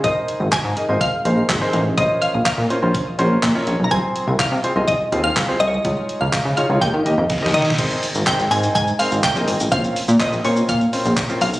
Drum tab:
CC |------------------------------------------------|------------------------------------------------|------------------------------------------------|------------------------------------------------|
HH |x-----x-----x-----x-----x-----x-----x-----x-----|x-----x-----x-----x-----x-----x-----x-----x-----|x-----x-----x-----x-----x-----x-----x-----x-----|x-----x-----x-----x-----x-----x-----x-----x-----|
SH |------------------------------------------------|------------------------------------------------|------------------------------------------------|------------------------------------------------|
CP |------------x-----------------------x-----------|------------x-----------------------x-----------|------------x-----------------------x-----------|------------x-----------------------------------|
SD |------------------------------------------------|------------------------------------------------|------------------------------------------------|------------------------------------o-o-o-o-o-o-|
BD |o-----------o-----------o-----------o-----------|o-----------o-----------o-----------o-----------|o-----------o-----------o-----------o-----------|o-----------o-----------o-----------o-----------|

CC |x-----------------------------------------------|------------------------------------------------|
HH |x-----o-----x-----o-----x-----o-----x-----o-----|x-----o-----x-----o-----x-----o-----x-----o-----|
SH |x--x--x--x--x--x--x--x--x--x--x--x--x--x--x--x--|x--x--x--x--x--x--x--x--x--x--x--x--x--x--x--x--|
CP |------------x-----------------------x-----------|------------x-----------------------x-----------|
SD |------------------------------------------------|------------------------------------------------|
BD |o-----------o-----------o-----------o-----------|o-----------o-----------o-----------o-----------|